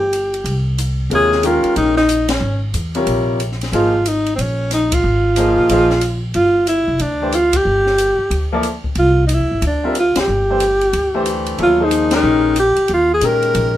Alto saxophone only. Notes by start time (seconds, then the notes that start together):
Already playing: G4
1.15 G#4
1.46 F4
1.77 D#4
1.98 D#4
2.30 C#4
3.75 F4
4.08 D#4
4.36 C4
4.41 C#4
4.74 D#4
4.94 F4
6.35 F4
6.68 E4
7.02 D4
7.35 F4
7.57 G4
8.99 F4
9.27 D#4
9.34 E4
9.67 D4
9.99 F4
10.20 G4
11.63 F4
11.84 D#4
12.16 D#4
12.60 G4
12.94 F4
13.14 G#4
13.26 A#4